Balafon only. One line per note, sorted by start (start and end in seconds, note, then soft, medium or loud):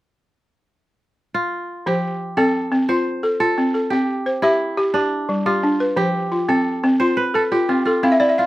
1.86 2.20 F3 medium
1.86 2.38 C5 medium
2.37 2.70 C4 medium
2.37 2.89 A4 medium
2.72 3.06 C4 medium
2.89 3.39 F4 medium
3.23 3.57 A4 medium
3.40 3.92 F4 medium
3.58 3.91 C4 medium
3.74 4.09 A4 medium
3.92 4.26 C4 medium
3.92 4.44 G5 soft
4.26 4.77 C5 medium
4.43 4.76 G4 medium
4.43 4.95 E5 medium
4.77 4.94 G4 medium
4.95 5.45 G4 medium
5.29 5.63 G3 medium
5.46 5.97 G4 medium
5.63 5.97 D4 medium
5.80 6.14 B4 medium
5.96 6.31 F3 medium
5.96 6.48 C5 soft
6.32 6.83 F4 medium
6.49 6.82 C4 medium
6.84 7.17 C4 medium
7.00 7.51 F4 medium
7.34 7.68 A4 medium
7.52 8.03 F4 medium
7.69 8.02 C4 medium
7.87 8.20 A4 medium
8.03 8.37 C4 medium
8.03 8.19 F5 medium
8.12 8.27 E5 medium
8.20 8.36 D5 medium
8.29 8.45 E5 medium
8.38 8.46 F5 medium